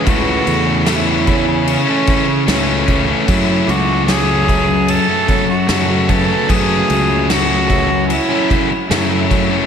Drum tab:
CC |xxxxxxxx|xxxxxxxx|xxxxxxxx|
SD |--o---o-|--o---o-|--o---o-|
BD |o--o-o-o|o--o-o-o|o--o-o-o|